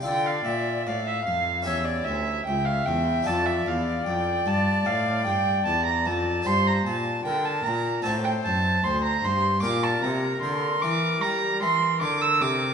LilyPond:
<<
  \new Staff \with { instrumentName = "Violin" } { \time 4/4 \key d \minor \tempo 4 = 75 g''16 f''16 e''8 d''16 e''16 f''8 e''16 d''16 e''8 g''16 f''16 g''8 | a''16 e''16 f''8 g''8 a''8 f''8 g''8 a''16 bes''16 a''8 | c'''16 bes''16 a''8 g''16 a''16 bes''8 a''16 g''16 a''8 c'''16 bes''16 c'''8 | d'''16 a''16 bes''8 c'''8 d'''8 bes''8 c'''8 d'''16 e'''16 d'''8 | }
  \new Staff \with { instrumentName = "Recorder" } { \time 4/4 \key d \minor d''4 f''4 cis''4 e''4 | d''1 | c''8 r8 bes'4 c''4 c''4 | bes'1 | }
  \new Staff \with { instrumentName = "Harpsichord" } { \time 4/4 \key d \minor <d' f' a'>2 <cis' g' a'>2 | <d' f' a'>1 | <d' g'>2 <c' d' fis'>2 | <bes d' g'>1 | }
  \new Staff \with { instrumentName = "Harpsichord" } { \clef bass \time 4/4 \key d \minor d8 bes,8 a,8 f,8 e,8 d,8 cis,8 e,8 | f,8 e,8 f,8 g,8 a,8 g,8 e,8 f,8 | g,8 bes,8 d8 bes,8 a,8 fis,8 d,8 g,8 | bes,8 c8 d8 e8 g8 e8 d8 c8 | }
  \new Staff \with { instrumentName = "Cello" } { \clef bass \time 4/4 \key d \minor d8 bes,8 a,8 f,8 e,8 d,8 cis,8 e,8 | f,8 e,8 f,8 g,8 a,8 g,8 e,8 f,8 | g,8 bes,8 d8 bes,8 a,8 fis,8 d,8 g,8 | bes,8 c8 d8 e8 g8 e8 d8 c8 | }
>>